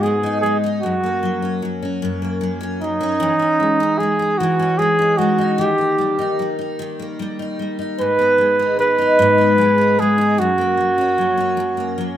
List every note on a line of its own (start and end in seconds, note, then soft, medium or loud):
0.00 0.83 G#2 medium
0.00 0.42 G#3 soft
0.00 0.91 B3 soft
0.00 0.22 D#4 soft
0.00 0.41 G#4 medium
0.23 0.62 D#4 soft
0.41 0.91 G#3 soft
0.41 0.57 G#4 medium
0.64 0.91 D#4 soft
0.82 2.01 F#2 medium
0.82 1.67 F#4 medium
1.03 2.21 A#3 soft
1.23 1.61 F#3 soft
1.42 1.82 C#4 medium
1.62 2.40 F#3 soft
1.82 2.60 C#4 soft
2.02 3.28 F#2 medium
2.22 3.28 A#3 soft
2.41 2.80 F#3 soft
2.61 3.00 C#4 medium
2.81 3.28 F#3 soft
2.81 4.00 D#4 medium
3.00 3.39 C#4 medium
3.20 4.39 E3 medium
3.39 4.58 C#4 soft
3.60 3.99 G#3 soft
3.80 4.19 D#4 medium
3.98 4.78 G#3 soft
3.98 4.39 G#4 medium
4.19 4.98 D#4 medium
4.38 5.58 E3 medium
4.38 4.80 F#4 medium
4.59 5.67 C#4 soft
4.78 5.17 G#3 soft
4.78 5.19 G#4 medium
4.99 5.38 D#4 medium
5.18 5.66 G#3 soft
5.18 5.61 F#4 medium
5.38 6.18 D#4 medium
5.58 6.79 D#3 medium
5.58 6.49 G4 medium
5.78 6.98 A#3 soft
5.98 6.38 G3 soft
6.19 6.58 D#4 soft
6.39 7.18 G3 soft
6.59 7.39 D#4 soft
6.79 10.29 D#3 medium
6.99 8.07 A#3 soft
7.19 7.58 G3 soft
7.39 7.78 D#4 soft
7.59 8.07 G3 soft
7.79 8.59 D#4 soft
7.98 9.18 G#2 medium
7.98 8.76 B4 medium
8.19 9.37 B3 soft
8.38 8.78 G#3 soft
8.59 8.97 D#4 soft
8.79 9.57 G#3 soft
8.79 10.01 B4 medium
8.98 9.77 D#4 soft
9.19 10.38 G#2 medium
9.38 10.46 B3 soft
9.58 9.98 G#3 soft
9.78 10.17 D#4 soft
9.99 10.46 G#3 soft
9.99 10.40 G#4 medium
10.18 10.46 D#4 medium
10.38 11.56 F#2 medium
10.38 12.10 F#4 medium
10.58 11.76 A#3 soft
10.77 11.17 F#3 soft
10.98 11.37 C#4 medium
11.18 11.97 F#3 soft
11.37 12.17 C#4 soft
11.57 12.17 F#2 medium
11.77 12.17 A#3 soft
11.98 12.17 F#3 soft